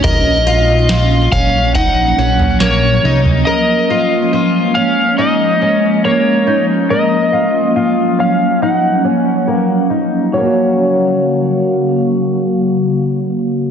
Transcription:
<<
  \new Staff \with { instrumentName = "Electric slide guitar" } { \time 4/4 \key ges \major \tempo 4 = 70 ees''4. f''8 ges''4 des''8. r16 | ees''4. f''8 ees''4 des''8. r16 | ees''4. f''8 ges''4. r8 | des''1 | }
  \new Staff \with { instrumentName = "Twelve-string acoustic guitar" } { \time 4/4 \key ges \major bes'8 f'8 f'8 des'8 ees'8 des'8 bes8 ees'8 | bes'8 f'8 f'8 des'8 ees'8 des'8 bes8 ees'8 | bes'8 f'8 f'8 des'8 ees'8 des'8 bes8 ees'8 | <ges bes des' ges'>1 | }
  \new Staff \with { instrumentName = "Ambient pad" } { \clef bass \time 4/4 \key ges \major << { <f bes des'>1~ | <f bes des'>1~ | <f bes des'>1 | <des ges bes f''>1 | } \\ { ges1 | aes1 | ges1 | r1 | } >> }
  \new Staff \with { instrumentName = "Analog synth bass" } { \clef bass \time 4/4 \key ges \major bes,,4. bes,,4 bes,,4 c,8 | r1 | r1 | r1 | }
  \new DrumStaff \with { instrumentName = "Drums" } \drummode { \time 4/4 <bd tomfh>4 sn8 <bd tomfh>8 <bd tomfh>8. tomfh16 sn8. tomfh16 | r4 r4 r4 r4 | r4 r4 r4 r4 | r4 r4 r4 r4 | }
>>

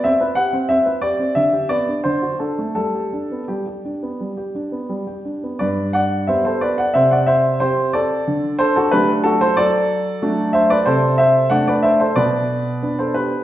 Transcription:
\new Staff \with { instrumentName = "Grand piano" } { \time 4/4 \key g \major \tempo 4 = 90 << { e''8 fis''8 e''8 d''8 e''8 d''8 c''8 a'8 | a'4 g'2~ g'8 r8 | <b' d''>8 <d'' fis''>8 <c'' e''>16 <a' c''>16 <b' d''>16 <d'' fis''>16 <c'' e''>16 <d'' fis''>16 <c'' e''>8 <g' c''>8 <a' d''>8~ | <a' d''>8 <a' c''>16 <fis' a'>16 <g' b'>8 <fis' a'>16 <a' c''>16 <a' d''>4. <c'' e''>16 <b' d''>16 |
<a' c''>8 <c'' e''>8 <d'' fis''>16 <b' d''>16 <c'' e''>16 <a' c''>16 <b' d''>4~ <b' d''>16 <a' c''>16 <g' b'>8 | } \\ { c'16 b'16 g'16 c'16 c'16 b'16 g'16 c'16 d16 g'16 b16 d'16 d16 fis'16 d'16 a16 | g16 g'16 d'16 b16 g16 g'16 d'16 b16 g16 g'16 d'16 b16 g16 g'16 d'16 b16 | g,4 <b g'>4 c4 c'4 | d4 <fis a d'>4 fis4 <fis a d'>4 |
c4 <a d'>4 b,4 <b d'>4 | } >> }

